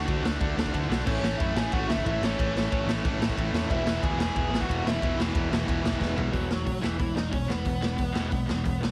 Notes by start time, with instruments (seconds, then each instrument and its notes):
Already playing: distorted electric guitar D3 A3 D4, lead electric guitar F#4 F#5
0.06 picked electric bass D2, overdriven electric guitar D3 A3 D4 F#4, kick, ride
0.23 picked electric bass D2, overdriven electric guitar D3 A3 D4 F#4, snare
0.38 picked electric bass D2, overdriven electric guitar D3 A3 D4 F#4, kick, ride
0.56 picked electric bass D2, overdriven electric guitar D3 A3 D4 F#4, snare
0.66 kick
0.73 picked electric bass D2, overdriven electric guitar D3 A3 D4 F#4, kick, ride
0.88 picked electric bass B1, overdriven electric guitar D3 A3 D4 F#4, snare
1.06 picked electric bass A1, overdriven electric guitar A2 E3 A3 C#4 E4, lead electric guitar C#4 C#5, kick, crash
1.21 picked electric bass A1, overdriven electric guitar A2 E3 A3 C#4 E4, snare
1.38 picked electric bass F#2, overdriven electric guitar A2 E3 A3 C#4 E4, lead electric guitar E4 E5, kick, ride
1.55 picked electric bass A1, overdriven electric guitar A2 E3 A3 C#4 E4, lead electric guitar G#4 G#5, snare
1.72 picked electric bass A1, overdriven electric guitar A2 E3 A3 C#4 E4, lead electric guitar F#4 F#5, kick, ride
1.88 picked electric bass D2, overdriven electric guitar A2 E3 A3 C#4 E4, lead electric guitar E4 E5, snare
1.98 kick
2.04 picked electric bass A1, overdriven electric guitar A2 E3 A3 C#4 E4, lead electric guitar E4 E5, kick, ride
2.21 picked electric bass A1, overdriven electric guitar A2 E3 A3 C#4 E4, lead electric guitar C#4 C#5, snare
2.38 picked electric bass A1, overdriven electric guitar A2 E3 A3 C#4 E4, kick, ride
2.54 picked electric bass A1, overdriven electric guitar A2 E3 A3 C#4 E4, snare
2.70 picked electric bass A1, overdriven electric guitar A2 E3 A3 C#4 E4, kick, ride
2.86 picked electric bass A1, overdriven electric guitar A2 E3 A3 C#4 E4, snare
3.03 picked electric bass A1, overdriven electric guitar A2 E3 A3 C#4 E4, kick, ride
3.18 picked electric bass A1, overdriven electric guitar E3 A3 C#4 E4, snare
3.22 overdriven electric guitar A2
3.29 kick
3.36 picked electric bass A1, overdriven electric guitar A2 E3 A3 C#4 E4, kick, ride
3.51 picked electric bass E2, overdriven electric guitar A3 C#4 E4, snare
3.56 overdriven electric guitar A2 E3
3.70 picked electric bass E1, overdriven electric guitar E2 B2 E3 G#3 B3 E4, lead electric guitar E4 E5, kick, ride
3.85 picked electric bass E1, overdriven electric guitar E2 B2 E3 G#3 B3 E4, snare
4.02 picked electric bass D2, overdriven electric guitar E2 B2 E3 G#3 B3 E4, lead electric guitar G#4 G#5, kick, ride
4.15 picked electric bass E1, overdriven electric guitar B3 E4
4.19 overdriven electric guitar E2 B2 E3 G#3, lead electric guitar G#4 G#5, snare
4.34 picked electric bass E1, overdriven electric guitar E2 B2 E3 G#3 B3 E4, kick, ride
4.38 distorted electric guitar E3
4.49 picked electric bass A1, overdriven electric guitar B2 E3 G#3 B3 E4
4.53 overdriven electric guitar E2, snare
4.60 lead electric guitar F#4 F#5, kick
4.67 picked electric bass E1, overdriven electric guitar E2 B2 E3 G#3 B3 E4, kick, ride
4.83 picked electric bass E1, overdriven electric guitar E2 B2 E3 G#3 B3 E4, lead electric guitar E4 E5, snare
5.01 picked electric bass E1, overdriven electric guitar E2 B2 E3 G#3 B3 E4, kick, ride
5.17 picked electric bass E1, overdriven electric guitar E2 B2 E3 G#3 B3 E4, snare
5.33 picked electric bass E1, overdriven electric guitar E2 B2 E3 G#3 B3 E4, kick, ride
5.50 picked electric bass E1, overdriven electric guitar E2 B2 E3 G#3 B3 E4, snare
5.66 picked electric bass E1, overdriven electric guitar E2 B2 E3 G#3 B3 E4, kick, ride
5.71 distorted electric guitar E3
5.82 picked electric bass E1, overdriven electric guitar E2 B2 E3 G#3 B3 E4, snare
5.93 kick
5.99 picked electric bass E1, overdriven electric guitar E2 B2 E3 G#3 B3 E4, kick, snare
6.15 picked electric bass B1, overdriven electric guitar E2 B2 E3 G#3 B3 E4, floor tom
6.31 picked electric bass E1, overdriven electric guitar E2 B2 E3 G#3 B3, lead electric guitar F#3 F#4, kick, open hi-hat
6.48 overdriven electric guitar E2 B2 E3 G#3, snare
6.65 picked electric bass B1, overdriven electric guitar E2 B2 E3 G#3, kick, open hi-hat
6.81 picked electric bass E1, overdriven electric guitar E2 B2 E3 G#3 B3, lead electric guitar E3 E4, snare
6.98 picked electric bass E1, overdriven electric guitar E2 B2 E3 G#3, lead electric guitar E3 E4, kick, open hi-hat
7.14 picked electric bass E1, overdriven electric guitar E2 B2 E3 G#3, lead electric guitar D#4 D#5, snare
7.30 picked electric bass E1, overdriven electric guitar E2 B2 E3 G#3, lead electric guitar C#4 C#5, kick, open hi-hat
7.48 picked electric bass E1, overdriven electric guitar E2 B2 E3 G#3, lead electric guitar B3 B4, snare
7.65 picked electric bass E1, overdriven electric guitar E2 B2 E3 G#3, kick, open hi-hat
7.81 picked electric bass E1, overdriven electric guitar E2 B2 E3 G#3, snare
7.96 picked electric bass E1, overdriven electric guitar E2 B2 E3 G#3, kick, open hi-hat
8.12 picked electric bass E1, overdriven electric guitar E2 B2 E3 G#3 B3, snare
8.30 picked electric bass B1, overdriven electric guitar E2 B2 E3 G#3, kick, open hi-hat
8.46 picked electric bass E1, overdriven electric guitar E2 B2 E3 G#3, snare
8.64 picked electric bass E1, overdriven electric guitar E2 B2 E3 G#3, kick, open hi-hat
8.81 picked electric bass B1, overdriven electric guitar E2 B2 E3 G#3, snare